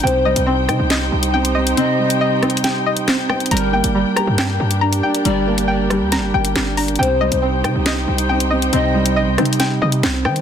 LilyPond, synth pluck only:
\new Staff \with { instrumentName = "Synth pluck" } { \time 4/4 \key c \dorian \tempo 4 = 138 g''8 ees''8 c'8 g''8 ees''4 g''8 ees''8 | c'4 ees''8 c'8 g''8 ees''8 c'8 g''8 | bes''8 g''8 g8 bes''8 g''4 bes''8 g''8 | g4 g''8 g8 bes''8 g''8 g8 bes''8 |
g''8 ees''8 c'8 g''8 ees''4 g''8 ees''8 | c'4 ees''8 c'8 g''8 ees''8 c'8 g''8 | }